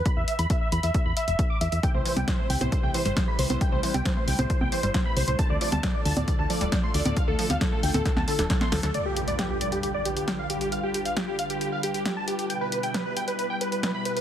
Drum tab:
HH |x-xxx-xxx-xxx-xx|x-oxx-oxx-oxx-ox|x-oxx-oxx-oxx-ox|x-oxx-oxx-oxx-ox|
SD |----------------|----o-------o---|----o-------o---|----o-------o---|
CG |----------------|---o---o-------o|---o---o-o------|---o---o-------o|
BD |o---o---o---o---|o---o---o---o---|o---o---o---o---|o---o---o---o---|

HH |x-oxx-oxx-oxx-ox|x-xxx-xxx-xxx-xx|x-xxx-xxx-xxx-xx|x-xxx-xxx-xxx-xx|
SD |----o---oo-ooooo|----o-------o---|----o-------o---|----o-------o---|
CG |---o---o-o---o--|----------------|----------------|----------------|
BD |o---o---o---o---|----------------|----------------|----------------|